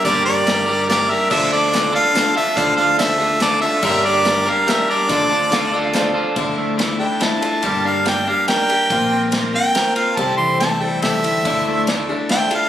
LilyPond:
<<
  \new Staff \with { instrumentName = "Harmonica" } { \time 3/4 \key d \minor \tempo 4 = 142 d''8 d''4. d''8 e''8 | e''8 d''4 f''4 e''8 | f''8 f''8 e''4 d''8 e''8 | e''8 d''4 f''8 e''8 d''8~ |
d''2 r4 | r4. g''8 a''4~ | a''8 f''8 g''8 f''8 g''4~ | g''4 r8 g''4 f''8 |
a''8 c'''8 a''8 g''8 e''4~ | e''4 r4 g''8 f''8 | }
  \new Staff \with { instrumentName = "Electric slide guitar" } { \time 3/4 \key d \minor r2. | r2. | r2. | r2. |
r4 \tuplet 3/2 { f''8 d''8 f''8 } d''8. r16 | r2. | r2. | r2. |
r2. | r2. | }
  \new Staff \with { instrumentName = "Clean electric guitar" } { \time 3/4 \key d \minor <g d' g' bes'>8 <d' g' bes'>8 <g d' g' bes'>8 <g d' g' bes'>8 <g d' g' bes'>8 <g d' g' bes'>8 | <d d' f' a'>8 <d' f' a'>8 <d d' f' a'>8 <d d' f' a'>8 <d d' f' a'>8 <d d' f' a'>8 | <d d' f' a'>8 <d' f' a'>8 <d d' f' a'>8 <d d' f' a'>8 <d d' f' a'>8 <d d' f' a'>8 | <g d' g' bes'>8 <d' g' bes'>8 <g d' g' bes'>8 <g d' g' bes'>8 <g d' g' bes'>8 <g d' g' bes'>8 |
<d d' f' a'>8 <d' f' a'>8 <d d' f' a'>8 <d d' f' a'>8 <d d' f' a'>8 <d d' f' a'>8 | d8 a8 a8 d'8 e'8 f'8 | g8 d'8 g8 d'8 bes'8 g'8 | bes8 c'8 bes8 c'8 bes'8 f'8 |
c8 e8 a8 g8 a'8 e'8 | d8 a8 a8 d'8 e'8 f'8 | }
  \new Staff \with { instrumentName = "Twelve-string acoustic guitar" } { \time 3/4 \key d \minor <g, d g bes d' bes'>4 <g bes d' bes'>8 <g bes d' bes'>8 <g bes d' bes'>8 <g bes d' bes'>8 | <d f d' f' a'>4 <f d' f' a'>8 <d' f' a'>8 <f d' f' a'>4 | <d f d' f' a'>4 <f d' f' a'>8 <d' f' a'>8 <f d' f' a'>8 <d' f' a'>8 | <g, d g bes d' bes'>4 <g bes d' bes'>8 <g bes d' bes'>8 <g bes d' bes'>8 <g bes d' bes'>8 |
<d f d' f' a'>4 <f d' f' a'>8 <d' f' a'>8 <f d' f' a'>4 | <d f d' e' a'>4 <f d' e' a'>8 <d' e' a'>8 <f d' e' a'>8 <d' e' a'>8 | <g, d g bes d' bes'>4 <g bes d' bes'>8 <g bes d' bes'>8 <g bes d' bes'>8 <g bes d' bes'>8 | <bes c' f' bes'>4 <bes c' f' bes'>8 <c' f' bes'>8 <bes c' f' bes'>4 |
<c g c' e' a'>4 <g c' e' a'>8 <c' e' a'>8 <g c' e' a'>4 | <d f d' e' a'>4 <f d' e' a'>8 <d' e' a'>8 <f d' e' a'>8 <d' e' a'>8 | }
  \new Staff \with { instrumentName = "Fingered electric bass" } { \clef bass \time 3/4 \key d \minor g,,8 g,,8 g,,2 | d,2 r4 | d,8 d,8 d,2 | g,,2 r4 |
d,8 d,8 d,2 | d,2 r4 | g,,2 r4 | bes,,2 r4 |
c,2 c,8 d,8 | d,2 r4 | }
  \new DrumStaff \with { instrumentName = "Drums" } \drummode { \time 3/4 <hh bd>4 <hh sn>4 <hh sn>4 | <cymc bd>4 <hh sn>4 <hh sn>4 | <hh bd>4 <hh sn>4 <hh sn>4 | <cymc bd>4 <hh sn>4 <hh sn>4 |
<hh bd>4 <hh sn>4 <hh sn>4 | <bd cymr>4 <cymr sn>4 <cymr sn>8 cymr8 | <bd cymr>4 <cymr sn>4 <cymr sn>8 cymr8 | <bd cymr>4 <cymr sn>4 <cymr sn>8 cymr8 |
<bd cymr>4 <cymr sn>4 <cymr sn>8 cymr8 | <bd cymr>4 <cymr sn>4 <cymr sn>8 cymr8 | }
>>